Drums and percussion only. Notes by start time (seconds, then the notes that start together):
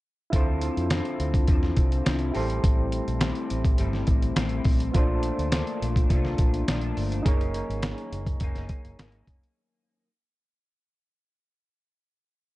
0.33 kick, closed hi-hat
0.61 closed hi-hat
0.77 closed hi-hat
0.90 snare, closed hi-hat
1.05 closed hi-hat
1.20 closed hi-hat
1.34 kick, closed hi-hat
1.48 kick, closed hi-hat
1.63 snare
1.77 kick, closed hi-hat
1.92 closed hi-hat
2.06 snare, closed hi-hat
2.19 closed hi-hat
2.35 open hi-hat
2.50 closed hi-hat
2.64 kick, closed hi-hat
2.92 closed hi-hat
3.08 closed hi-hat
3.21 snare, closed hi-hat
3.35 closed hi-hat
3.50 closed hi-hat
3.65 kick, closed hi-hat
3.78 closed hi-hat
3.93 snare
4.07 kick, closed hi-hat
4.22 closed hi-hat
4.36 snare, closed hi-hat
4.49 closed hi-hat
4.64 kick, open hi-hat
4.80 closed hi-hat
4.94 kick, closed hi-hat
5.23 closed hi-hat
5.39 closed hi-hat
5.52 snare, closed hi-hat
5.67 closed hi-hat
5.82 closed hi-hat
5.96 kick, closed hi-hat
6.10 kick, closed hi-hat
6.25 snare
6.38 kick, closed hi-hat
6.54 closed hi-hat
6.68 snare, closed hi-hat
6.81 closed hi-hat
6.97 open hi-hat
7.12 closed hi-hat
7.26 kick, closed hi-hat
7.41 closed hi-hat
7.54 closed hi-hat
7.71 closed hi-hat
7.83 snare, closed hi-hat
7.98 closed hi-hat
8.13 closed hi-hat
8.27 kick, closed hi-hat
8.40 kick, closed hi-hat
8.55 snare, closed hi-hat
8.69 kick, closed hi-hat
8.85 closed hi-hat
8.99 snare, closed hi-hat
9.12 closed hi-hat
9.27 kick, closed hi-hat
9.43 closed hi-hat